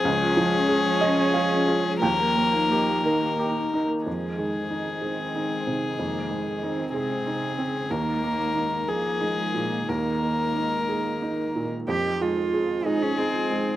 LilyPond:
<<
  \new Staff \with { instrumentName = "Violin" } { \time 6/8 \key f \minor \tempo 4. = 61 aes'2. | bes'2~ bes'8 r8 | aes'2.~ | aes'4. aes'4. |
bes'4. aes'4. | bes'2~ bes'8 r8 | r4. aes'4. | }
  \new Staff \with { instrumentName = "Marimba" } { \time 6/8 \key f \minor des'16 f'16 aes'16 des'16 aes'16 f'16 des'16 f'16 r16 des'16 aes'16 aes'16 | ees'16 g'16 bes'16 ees'16 bes'16 g'16 ees'16 g'16 bes'16 ees'16 bes'16 bes'16 | r2. | r2. |
r2. | r2. | f'16 ees''16 ees''16 f'16 r16 ees''16 f'16 ees''16 aes'16 f'16 ees''16 r16 | }
  \new Staff \with { instrumentName = "Analog synth pad" } { \time 6/8 \key f \minor <aes f' des''>2. | <bes ees' ees''>2. | <aes ees' c''>2.~ | <aes ees' c''>2. |
<aes ees' bes'>2.~ | <aes ees' bes'>2. | <aes ees' c''>2. | }
  \new Staff \with { instrumentName = "Felt piano" } { \time 6/8 \key f \minor << { r4. ees''8 f''4 | g''4. r4. | r2. | r2. |
r2. | r2. | r2. | } \\ { des,8 f8 aes'8 f'8 aes'8 f'8 | ees,8 bes8 g'8 bes'8 g'8 ees'8 | f,8 aes8 ees'8 aes'8 ees'8 c8 | f,8 aes8 ees'8 aes'8 ees'8 c'8 |
ees,8 bes8 ees'8 aes'8 ees'8 bes,8 | ees,8 bes8 ees'8 aes'8 ees'8 bes,8 | f,8 aes8 aes'8 aes8 ees'8 aes8 | } >> }
  \new Staff \with { instrumentName = "Viola" } { \time 6/8 \key f \minor des'2. | bes2~ bes8 r8 | aes4. c'4. | bes8 aes8 c'2 |
bes4. bes8 aes8 bes8 | bes2~ bes8 r8 | r2. | }
  \new Staff \with { instrumentName = "Cello" } { \clef bass \time 6/8 \key f \minor f2.~ | f4. ees4 r8 | f8 ees8 ees2~ | ees4. c8 c8 des8 |
ees4. f4. | ees2~ ees8 r8 | g'8 f'4 ees'16 des'16 c'4 | }
>>